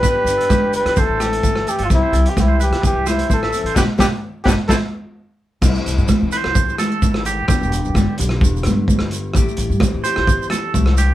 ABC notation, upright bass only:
X:1
M:4/4
L:1/16
Q:1/4=129
K:C
V:1 name="Upright bass" clef=bass
G,,, z G,,, z G,,,3 E,, A,,, A,,,3 G,,,2 z G,,, | C,, z C,, z C,,3 C, z C,,3 A,,,2 z A,,, | G,,, z G,,, z3 G,,, z A,,, z6 z | C,, z C,, A,, z C, z C,,2 z3 _A,,,4 |
G,,, E,,,2 E,,, G,,, z B,,,2 E,,,2 G,,3 G,,,3 | A,,, z A,,, G,, z A,, z A,,,2 z3 C,,4 |]